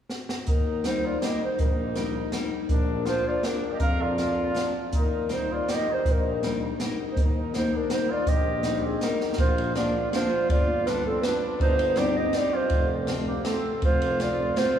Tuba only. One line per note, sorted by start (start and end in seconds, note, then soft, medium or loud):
0.48 1.20 D#2 medium
1.60 2.31 A#1 medium
2.69 3.42 A#1 medium
3.80 4.53 F2 medium
4.93 5.65 D#2 medium
6.05 6.77 A#1 medium
7.17 7.88 D#2 medium
8.26 8.99 A#1 medium
9.38 10.11 A#1 medium
10.49 11.21 G1 medium
11.60 12.32 G1 medium
12.70 13.43 F1 medium
13.83 14.55 F1 medium